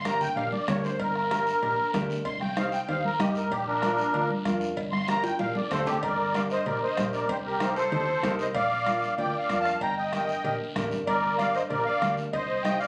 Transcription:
Already playing: G1
0.05 D4 G4 A#4 A#5, bombo rim, cowbell, high conga, short guiro
0.21 G5, low conga, short guiro
0.36 A#1 D4 G4 A#4 F5, cowbell, high conga, long guiro
0.52 D5, high conga
0.68 D2 D4 G4 A#4 C#5, bombo low, bombo rim, cowbell, high conga, low conga, low timbale, short guiro
0.83 C5, short guiro
0.99 G1 A#4, bombo low, cowbell, long guiro
1.15 bombo rim
1.31 D4 G4 A#4, bombo rim, cowbell, high conga, short guiro
1.47 short guiro
1.62 A#1 D4 G4 A#4, cowbell, high conga, long guiro
1.94 D2 D4 G4 A#4, bombo low, bombo rim, cowbell, high conga, low timbale, short guiro
2.10 short guiro
2.25 C2 C6, bombo low, cowbell, high conga, long guiro
2.41 G5, bombo rim, high conga
2.57 D#4 G4 C5 F5, bombo rim, cowbell, high conga, short guiro
2.72 G5, short guiro
2.88 D#2 D#4 G4 C5 F5, cowbell, high conga, long guiro
3.04 A#4, high conga
3.19 G2 D#4 G4 D#5, bombo low, bombo rim, cowbell, high conga, low conga, short guiro
3.35 A#4, short guiro
3.51 A#1 G4, bombo low, cowbell, high conga, long guiro
3.67 D4 A#4
3.82 D4 F4 A#4, bombo rim, cowbell, high conga, short guiro
3.98 short guiro
4.14 D2 D4 F4 A#4, cowbell, high conga, long guiro
4.30 high conga
4.45 F2 D4 F4 A#4, bombo low, bombo rim, cowbell, high conga, short guiro
4.61 short guiro
4.77 G1, bombo low, cowbell, high conga, long guiro
4.92 C6, bombo rim, high conga
5.08 D4 G4 A#4 A#5, bombo rim, cowbell, high conga, short guiro
5.24 G5, high timbale, short guiro
5.39 A#1 D4 G4 A#4 F5, cowbell, high conga, high timbale, long guiro
5.55 D5, high conga, low timbale
5.71 D2 D4 G4 A4 C5, bombo low, bombo rim, cowbell, short guiro
5.86 G4, low conga, low timbale, short guiro
6.03 G1 A#4 D5, bombo low, cowbell, high conga, long guiro
6.34 D4 G4 A#4 D5 F5, bombo rim, cowbell, high conga, short guiro
6.50 C5 D#5, short guiro
6.66 A#1 D4 G4 A#4 D5, cowbell, high conga, low conga, long guiro
6.82 C5 D#5
6.97 A#1 D4 G4 A#4, bombo low, bombo rim, cowbell, high conga, short guiro
7.13 A#4 D5, short guiro
7.29 C2 G4 C5, bombo low, cowbell, high conga, long guiro
7.45 G4 A#4
7.60 D#4 G4 C5, bombo rim, cowbell, high conga, short guiro
7.76 A4 C5, short guiro
7.92 D#2 D#4 G4 C5, cowbell, high conga, low conga, long guiro
8.23 C2 D#4 G4 A#4, bombo low, bombo rim, cowbell, high conga, low conga, low timbale, short guiro
8.39 C5 D#5, short guiro
8.55 A#1 D5 F5, bombo low, cowbell, high conga, long guiro
8.86 D4 F4 A#4, bombo rim, cowbell, high conga, short guiro
9.02 short guiro
9.18 D2 D4 F4 A#4 D5 G5, cowbell, high conga, low conga, long guiro
9.38 D5 F5
9.49 F2 D4 F4 A#4, bombo low, bombo rim, cowbell, high conga, short guiro
9.61 F5 A5
9.65 bombo rim, short guiro
9.81 G1 G5 A#5, bombo low, cowbell, high conga, long guiro
9.97 D#5 G5
10.12 D4 G4 A#4, bombo rim, cowbell, high conga, short guiro
10.29 short guiro
10.44 A#1 D4 G4 A#4, cowbell, high conga, low conga, long guiro
10.75 A1 D4 G4 A#4, bombo low, bombo rim, cowbell, high conga, low conga, low timbale, short guiro
10.91 G1, short guiro
11.07 G1 A#4 D5, bombo low, cowbell, high conga, long guiro
11.38 D4 G4 A#4 D5 F5, bombo rim, cowbell, high conga, short guiro
11.54 C5 D#5, short guiro
11.69 A#1 D4 G4 A#4 D5, cowbell, high conga, low conga, long guiro
11.85 D5 F5
12.01 D2 D4 G4 A#4, bombo low, bombo rim, cowbell, high conga, short guiro
12.17 short guiro
12.33 C2 C5 D#5, bombo low, cowbell, high conga, low conga, long guiro
12.63 D#4 G4 C5 D#5 G5, bombo rim, cowbell, high conga, short guiro
12.79 D5 F5, short guiro

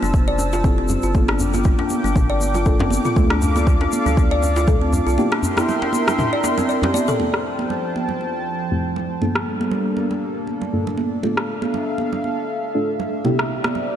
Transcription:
Already playing: C4 E4 G4 A4 C5 A5 E6
0.02 F1 D4, low conga, shaker
0.14 kick, high conga, shaker
0.28 D5
0.39 djembe tone, shaker
0.53 F4, djembe slap, shaker
0.64 C4 E4 G4 A4, kick, mid tom, shaker
0.78 C4
0.88 djembe bass, low conga, shaker
1.03 G1 F4, shaker
1.14 A#3 D4 F4 A4 G5 D6, kick, high conga, shaker
1.28 D4, cross-stick
1.39 djembe bass, shaker
1.54 F4, djembe tone, high conga, shaker
1.64 kick, low conga, shaker
1.79 D4, djembe slap, djembe tone
1.90 high conga, shaker
2.04 G1 D4, low conga, shaker
2.16 kick, mid tom, djembe tone, shaker
2.30 D5
2.41 high conga, shaker
2.54 F4, djembe tone, low conga, shaker
2.66 A#3 D4 F4 A4, kick, shaker
2.79 C4, djembe slap, djembe tone, low conga, djembe bass
2.90 high conga, shaker
3.05 F4, mid tom, shaker
3.16 D2 A3 D4 F4 A4 D5 F5, kick, high conga, shaker
3.30 D4, cross-stick
3.42 djembe bass, shaker
3.56 F4, high conga, djembe tone, shaker
3.67 kick, low conga, shaker
3.81 D4, djembe slap, djembe tone
3.92 high conga, shaker
4.06 D2 D4, low conga, shaker
4.17 kick, high conga, shaker
4.31 D5
4.42 djembe tone, shaker
4.56 F4, djembe slap, shaker
4.67 A3 D4 F4 A4, kick, mid tom, shaker
4.82 C4
4.93 low conga, djembe bass, shaker
5.07 C2 F4, shaker
5.18 A#3 D4 E4 G4 A#4 E5 G5 C6, high conga, shaker
5.32 D4, cross-stick
5.43 djembe bass, shaker
5.57 E4, cross-stick, high conga, djembe tone, shaker
5.69 low conga, shaker
5.82 D4, djembe slap, djembe tone
5.93 high conga, shaker
6.08 D4, cross-stick, low conga, shaker
6.18 mid tom, djembe tone, shaker
6.33 D5
6.44 D4, djembe slap, high conga, shaker
6.58 C4, djembe tone, low conga, shaker
6.69 D5, shaker
6.82 G4, djembe slap, djembe tone, djembe bass, low conga
6.94 D5, high conga, shaker
7.08 A4, mid tom, shaker
7.20 F2 F3 A3 C4 E4 G4 C5 G5 A5, high conga
7.34 cross-stick
7.59 high conga
7.70 low conga
7.96 high conga
8.09 low conga
8.21 high conga
8.71 F2 A3 C4 E4 G4
8.96 low conga
9.21 G2 G3 A#3 D4 F4 A4, high conga
9.35 cross-stick
9.61 high conga
9.71 low conga
9.97 high conga
10.11 low conga
10.47 high conga
10.61 low conga
10.73 G2 A#3 D4 F4 A4
10.87 low conga
10.97 high conga
11.23 A3 D4 F4 A4 E5 F5, high conga
11.37 cross-stick
11.62 high conga
11.74 low conga
11.98 high conga
12.13 low conga
12.24 high conga
12.74 A3 D4 F4 A4
13.00 low conga
13.25 C3 A#3 C4 D4 E4 G4 D5, high conga
13.39 cross-stick
13.64 cross-stick, high conga
13.75 low conga

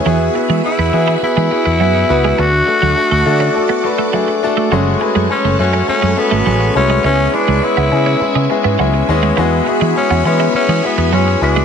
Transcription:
Already playing: E5
0.05 E2 E3 B3 E4 F#4 G#4 F#5 B5
0.34 B3 E4 F#4 G#4, muted clean electric guitar stroke
0.49 E3 G#3
0.63 B3 E4 F#4 B4
0.79 E2 B3
0.93 E3 B3 E4 F#4 G#4, muted clean electric guitar stroke
1.08 E4
1.22 B3 E4 F#4 B4, muted fretless electric bass stroke
1.37 E3 G#3
1.51 B3 E4 F#4 G#4, muted clean electric guitar stroke
1.66 E2 B3
1.80 F#2 F#3 B3 E4 F#4 G#4
1.95 muted clean electric guitar stroke
2.09 C#2 B3 E4 F#4 B4
2.24 G#3
2.38 D2 A3 D4 F#4 A4 D5 D6
2.67 A3 D4 F#4 A4, muted clean electric guitar stroke
2.82 D2 F#3
2.97 A3 D4 F#4 A4
3.11 D2 A3
3.26 D3 A3 D4 F#4 A4, muted clean electric guitar stroke
3.40 C#4
3.55 A3 D4 F#4 A4
3.69 B3
3.84 A3 D4 F#4 B4, muted clean electric guitar stroke
3.98 A3
4.13 F#3 A3 D4 F#4 G#4
4.28 muted clean electric guitar stroke
4.43 A3 D4 F#4 A4
4.57 A3
4.72 F#1 F#3 G#3 A3 C#4 F#4 G#4 A4 F#5 G#5 C#6
5.01 G#3 A3 C#4 F#4 B4, muted clean electric guitar stroke
5.15 F#2 G#3
5.30 G#3 A3 C#4 F#4 G#4
5.45 F#1 A3
5.59 F#2 G#3 A3 C#4 F#4 G#4, muted clean electric guitar stroke
5.73 C#4
5.88 G#3 A3 C#4 F#4 G#4, muted fretless electric bass stroke
6.02 F#2 G#3
6.17 G#3 A3 B3 C#4 F#4 A4, muted clean electric guitar stroke
6.31 G#1 A3
6.46 A1 F#3 G#3 A3 C#4 F#4 G#4
6.60 muted clean electric guitar stroke
6.75 C2 G#3 A3 C#4 F#4 B4
6.90 G#3
7.04 C#2 G#3 B3 C#4 E4 G#4 B4 E5
7.33 G#3 B3 C#4 D4 E4 B4, muted clean electric guitar stroke
7.48 C#2 G#3
7.63 G#3 B3 C#4 E4 G#4
7.77 C#2 B3
7.92 C#3 G#3 B3 C#4 E4 G#4, muted clean electric guitar stroke
8.06 C#4
8.21 G#3 B3 C#4 E4 G#4, muted fretless electric bass stroke
8.35 C#3 G#3
8.50 G#3 B3 C#4 E4 G#4, muted clean electric guitar stroke
8.64 G#2 B3
8.79 C#2 F#3 G#3 B3 C#4 E4 G#4
8.94 muted clean electric guitar stroke
9.09 D#2 G#3 B3 C#4 E4 G#4
9.23 G#3
9.37 E2 E3 G#3 B3 E4 F#4 G#4 F#5 B5
9.66 G#3 B3 E4 F#4 G#4, muted clean electric guitar stroke
9.81 E3 G#3
9.96 G#3 B3 C#4 E4 F#4 G#4
10.10 E2 B3
10.25 E3 G#3 B3 C#4 E4 F#4 B4, muted clean electric guitar stroke
10.40 E4
10.54 G#3 B3 C#4 E4 F#4 G#4, muted fretless electric bass stroke
10.68 E3 G#3
10.84 G#3 B3 E4 F#4 G#4, muted clean electric guitar stroke
10.98 E2 B3
11.12 F#2 F#3 G#3 B3 C#4 E4 F#4 G#4
11.28 muted clean electric guitar stroke
11.41 C#2 G#3 B3 D4 E4 F#4 G#4
11.56 G#3

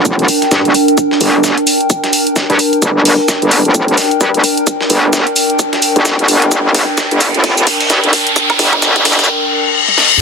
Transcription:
Already playing: F1 D4 A#4 G5
0.05 kick, closed hi-hat, shaker
0.19 closed hi-hat
0.28 open hi-hat, shaker
0.42 snare, closed hi-hat
0.51 G2, kick, snare, closed hi-hat, shaker
0.65 G1, closed hi-hat
0.74 open hi-hat, shaker
0.88 closed hi-hat
0.98 kick, closed hi-hat, shaker
1.11 snare
1.21 G1, open hi-hat, shaker
1.44 kick, snare, closed hi-hat, shaker
1.58 closed hi-hat
1.67 open hi-hat, shaker
1.81 closed hi-hat
1.90 kick, closed hi-hat, shaker
2.04 snare, closed hi-hat
2.13 open hi-hat, shaker
2.27 closed hi-hat
2.36 kick, snare, closed hi-hat, shaker
2.50 G2, closed hi-hat
2.59 open hi-hat, shaker
2.73 closed hi-hat
2.82 G1, kick, closed hi-hat, riser, shaker
3.05 open hi-hat
3.28 kick, snare, closed hi-hat, shaker
3.42 G1, closed hi-hat
3.51 open hi-hat, shaker
3.65 F1, closed hi-hat
3.75 kick, closed hi-hat, shaker
3.88 closed hi-hat
3.98 snare, open hi-hat, shaker
4.11 closed hi-hat
4.21 G2, kick, closed hi-hat, shaker
4.34 G1, closed hi-hat
4.44 open hi-hat, shaker
4.57 closed hi-hat
4.67 kick, closed hi-hat, shaker
4.81 snare
4.90 G1, open hi-hat, shaker
5.13 kick, snare, closed hi-hat, shaker
5.27 closed hi-hat
5.36 open hi-hat, shaker
5.50 closed hi-hat
5.59 kick, closed hi-hat, shaker
5.73 snare, closed hi-hat
5.82 open hi-hat, shaker
5.96 G1, closed hi-hat
6.05 kick, snare, closed hi-hat, shaker
6.19 G1, closed hi-hat
6.28 G1, open hi-hat, shaker
6.42 closed hi-hat
6.51 G1, kick, closed hi-hat, shaker
6.75 kick, open hi-hat
6.98 kick, snare, closed hi-hat, shaker
7.11 G1, closed hi-hat
7.21 kick, open hi-hat, shaker
7.34 F1, closed hi-hat
7.44 kick, closed hi-hat, open hi-hat
7.57 closed hi-hat, shaker
7.67 kick, open hi-hat
7.81 closed hi-hat, open hi-hat
7.90 G2, kick, snare, closed hi-hat, shaker
8.04 G1, closed hi-hat
8.13 kick, open hi-hat, shaker
8.27 closed hi-hat
8.36 kick, closed hi-hat, shaker
8.50 kick, snare, closed hi-hat, high woodblock
8.59 G1, kick, open hi-hat, shaker
8.73 kick, high woodblock
8.82 kick, snare, closed hi-hat, shaker
8.96 G1, kick, closed hi-hat
9.05 kick, snare, open hi-hat, shaker
9.12 snare, shaker
9.19 kick, snare, shaker
9.24 snare, shaker
9.28 reverse cymbal
9.88 high tom
9.98 snare
10.11 mid tom

